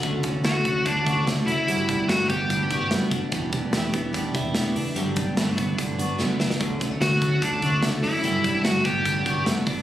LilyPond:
<<
  \new Staff \with { instrumentName = "Lead electric guitar" } { \time 4/4 \key d \major \tempo 4 = 146 r4 fis'4 d'4 r8 e'8~ | e'4 fis'8 g'4. r4 | r1 | r1 |
r4 fis'4 d'4 r8 e'8~ | e'4 fis'8 g'4. r4 | }
  \new Staff \with { instrumentName = "Clean electric guitar" } { \time 4/4 \key d \major d8 cis'8 fis'8 a4 fis'8 a8 cis'8 | g8 d'4 b8 d'8 fis'8 b8 d'8 | e,8 d'8 e'8 b8 d'8 e'8 b8 d'8 | g8 d'8 e'16 fis'16 b8 d'8 fis'8 b8 d'8 |
d8 b16 cis'16 fis'8 a4 fis'8 a8 cis'8 | g8 d'4 b8 d'8 fis'8 b8 d'8 | }
  \new Staff \with { instrumentName = "Steel-string acoustic guitar" } { \time 4/4 \key d \major <d a cis' fis'>8 <a cis' fis'>8 <d a cis' fis'>8 <a cis' fis'>8 <d a cis' fis'>8 <a cis' fis'>8 <d a cis' fis'>8 <a cis' fis'>8 | <g b d' fis'>8 <b d' fis'>8 <g b d' fis'>8 <b d' fis'>8 <g b d' fis'>8 <b d' fis'>8 <g b d' fis'>8 <b d' fis'>8 | <e b d' g'>8 <b d' g'>8 <e b d' g'>8 <b d' g'>8 <e b d' g'>8 <b d' g'>8 <e b d' g'>8 <b d' g'>8 | <g, d fis b d'>8 <fis b d'>8 <g, d fis b d'>8 <fis b d'>8 <d fis b d'>8 <fis b d'>8 <g, d fis b d'>8 <fis b d'>8 |
<d fis a cis'>8 <fis a cis'>8 <d fis a cis'>8 <fis a cis'>8 <d fis a cis'>8 <fis a cis'>8 <d fis a cis'>8 <fis a cis'>8 | <g, d fis b d'>8 <fis b d'>8 <g, d fis b d'>8 <fis b d'>8 <d fis b d'>8 <fis b d'>8 <g, d fis b d'>8 <fis b d'>8 | }
  \new Staff \with { instrumentName = "Fingered electric bass" } { \clef bass \time 4/4 \key d \major d,4 d,8 d,8 d,8 d,8 cis,8 fis,,8 | g,,4 g,,8 g,,8 g,,8 g,,8 fis,,8 fis,,8 | e,,4 e,,8 e,,8 e,,8 e,,8 e,,8 fis,,8 | g,,4 g,,8 g,,8 g,,8 g,,8 fis,,8 cis,8 |
d,4 d,8 d,8 d,8 d,8 cis,8 fis,,8 | g,,4 g,,8 g,,8 g,,8 g,,8 fis,,8 fis,,8 | }
  \new DrumStaff \with { instrumentName = "Drums" } \drummode { \time 4/4 <hh bd>8 <hh bd>8 <hh sn>8 <hh bd>8 <hh bd>8 <hh bd>8 <hh sn>8 hh8 | hh8 <hh bd>8 <hh sn>8 <hh bd>8 <hh bd>8 <hh bd>8 <hh sn>8 <hh bd>8 | <hh bd>8 <hh bd>8 <hh sn>8 <hh bd>8 <hh bd>8 <hh bd>8 <hh sn>8 hho8 | hh8 <hh bd>8 <hh sn>8 <hh bd>8 <hh bd>8 hh8 sn8 sn16 sn16 |
<hh bd>8 <hh bd>8 <hh sn>8 <hh bd>8 <hh bd>8 <hh bd>8 <hh sn>8 hho8 | hh8 <hh bd>8 <hh sn>8 <hh bd>8 <hh bd>8 <hh bd>8 <hh sn>8 <hho bd>8 | }
>>